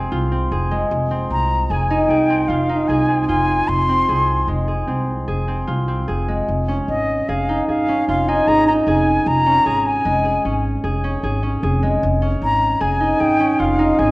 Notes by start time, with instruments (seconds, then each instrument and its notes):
Already playing: harp G#3 C4 F4 G#4
0.12 upright bass C2, harp F4
0.32 harp C4
0.52 upright bass F1, harp G#4
0.71 harp G#3
0.91 upright bass F1
1.11 harp C4
1.30 upright bass C2, flute A#5
1.70 upright bass F1, harp G#4, flute G#5
1.90 harp D#4
2.09 upright bass C2, harp G#4, flute G5
2.30 harp C4
2.48 upright bass F1, harp F4, flute F5
2.69 harp D#4
2.88 upright bass C2, harp G#4, flute G#5
3.09 harp C4
3.28 upright bass F1, harp F4, flute G#5
3.68 upright bass F1, flute C6
3.89 harp C4
4.09 upright bass C2, harp G#4
4.48 upright bass F1, harp G#3
4.68 harp G#4
4.87 upright bass C2, harp C4
5.28 upright bass F1, harp G#4
5.48 harp C4
5.67 upright bass C2, harp F4
5.88 harp C4
6.08 upright bass F1, harp G#4
6.28 harp G#3
6.48 upright bass F1
6.68 harp C#4
6.88 upright bass G#1, flute D#5
7.29 upright bass F1, harp G#4, flute F5
7.49 harp D#4
7.68 upright bass G#1, harp G#4, flute F5
7.89 harp C#4
8.08 upright bass F1, harp F4, flute F5
8.28 harp D#4, flute G#5
8.47 upright bass G#1, harp G#4, flute A#5
8.67 harp D#4, flute A#5
8.87 upright bass F1, harp G#4, flute G#5
9.26 upright bass F1, flute A#5
9.46 harp C#4
9.66 upright bass G#1, harp G#4
9.87 flute G#5
10.05 upright bass F1, harp G#3
10.25 harp G#4
10.45 upright bass G#1, harp C#4
10.84 upright bass F1, harp G#4
11.04 harp C#4
11.23 upright bass G#1, harp G#4
11.43 harp C#4
11.63 upright bass F1, harp G#4
11.82 harp G#3
12.03 upright bass F1
12.21 harp C#4
12.41 upright bass G#1, flute A#5
12.81 upright bass F1, harp G#4, flute G#5
13.01 harp D#4
13.20 upright bass G#1, harp G#4, flute G5
13.40 harp C#4
13.59 upright bass F1, harp F4, flute F5
13.79 harp D#4
13.99 upright bass G#1, harp G#4, flute G#5